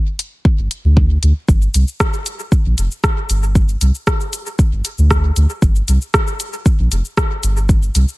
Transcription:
0.19 closed hi-hat
0.45 kick
0.58 G1
0.71 closed hi-hat
0.84 D2
0.97 kick
1.23 D2, closed hi-hat
1.48 G1, kick, shaker
1.62 shaker
1.74 C2, closed hi-hat, shaker
1.88 shaker
2.00 kick, cross-stick, shaker
2.14 shaker
2.26 closed hi-hat, shaker
2.39 shaker
2.52 kick, shaker
2.65 A#1
2.78 F1, closed hi-hat, shaker
2.91 shaker
3.04 kick, cross-stick, shaker
3.29 G1, closed hi-hat, shaker
3.43 shaker
3.55 kick, shaker
3.69 shaker
3.81 C2, closed hi-hat, shaker
3.95 shaker
4.07 kick, cross-stick, shaker
4.21 shaker
4.33 closed hi-hat, shaker
4.46 shaker
4.59 kick, shaker
4.72 G1
4.85 closed hi-hat, shaker
4.98 D2, shaker
5.10 kick, cross-stick, shaker
5.36 D2, closed hi-hat, shaker
5.50 shaker
5.62 G1, kick, shaker
5.76 shaker
5.88 C2, closed hi-hat, shaker
6.01 shaker
6.14 kick, cross-stick, shaker
6.27 shaker
6.40 closed hi-hat, shaker
6.53 shaker
6.66 kick, shaker
6.79 A#1
6.91 F1, closed hi-hat, shaker
7.05 shaker
7.17 kick, cross-stick, shaker
7.43 G1, closed hi-hat, shaker
7.57 shaker
7.69 kick, shaker
7.83 shaker
7.95 C2, closed hi-hat, shaker
8.08 shaker

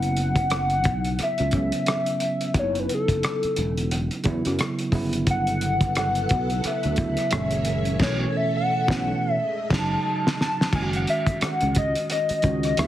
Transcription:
Already playing: F#1 C#3 F#3 B3 E4 F#5
0.02 closed hi-hat
0.17 closed hi-hat
0.36 kick, closed hi-hat
0.50 cross-stick, closed hi-hat
0.70 closed hi-hat
0.84 B1, kick, closed hi-hat
1.05 closed hi-hat
1.19 muted fretless electric bass stroke, cross-stick, closed hi-hat
1.23 E5
1.38 C#2, closed hi-hat
1.51 C#3 F#3 B3 C#4, kick, closed hi-hat
1.72 closed hi-hat
1.86 cross-stick, closed hi-hat
2.06 closed hi-hat
2.20 closed hi-hat
2.41 closed hi-hat
2.54 F#1 C#3 F#3 B3 D#4, kick, closed hi-hat
2.59 C#5
2.63 E4
2.75 closed hi-hat
2.79 B4
2.89 closed hi-hat
2.94 A4
3.08 F#1, kick, closed hi-hat
3.23 cross-stick, closed hi-hat
3.43 muted fretless electric bass stroke, closed hi-hat
3.56 E1, closed hi-hat
3.78 closed hi-hat
3.91 closed hi-hat
4.11 closed hi-hat
4.24 E2 C#3 F#3 B3 E4, kick, closed hi-hat
4.45 F#2, cross-stick, closed hi-hat
4.59 cross-stick, closed hi-hat
4.79 closed hi-hat
4.92 G1 C#3 F#3 B3 E4, kick, open hi-hat
5.13 closed hi-hat
5.27 B3 A4 F#5, kick, closed hi-hat
5.47 closed hi-hat
5.61 closed hi-hat
5.81 kick, closed hi-hat
5.95 F#5, cross-stick, closed hi-hat
6.15 closed hi-hat
6.29 B1, kick, closed hi-hat
6.50 closed hi-hat
6.64 E5, muted fretless electric bass stroke, cross-stick, closed hi-hat
6.83 D2, closed hi-hat
6.96 C#3 F#3 B3 E4, kick, closed hi-hat
7.17 cross-stick, closed hi-hat
7.31 F#1 A#2 D#3 G#3 A#3 C#4 G#4 C#5 E5, cross-stick, closed hi-hat
7.51 closed hi-hat
7.65 closed hi-hat
7.85 closed hi-hat
7.99 B1 B2 A3 C#4 A4 C#5 E5, kick, snare, crash
8.06 E3
8.37 E5
8.57 F#5
8.87 B1 B2 A3 C#4, kick, snare
8.95 E3
9.32 E5
9.36 G#3 A3 D#5
9.70 F#1 C#3 F#3 D#4 A5, kick, snare, crash
10.27 snare
10.41 A5, snare
10.61 snare
10.73 F#1 D#3 G#3 C#4 E4 G#5, kick, crash
10.82 F#4
10.93 F#5, closed hi-hat
11.07 E5, closed hi-hat
11.27 kick, closed hi-hat
11.41 F#5, muted fretless electric bass stroke, cross-stick, closed hi-hat
11.61 C#2, closed hi-hat
11.75 D#5, kick, closed hi-hat
11.95 closed hi-hat
12.10 D#5, cross-stick, closed hi-hat
12.29 muted fretless electric bass stroke, closed hi-hat
12.42 C#2 D#3 G#3 C#4 F#4, kick, closed hi-hat
12.63 cross-stick, closed hi-hat
12.77 D2 F#3 B3 E4 G#4 E5, cross-stick, closed hi-hat

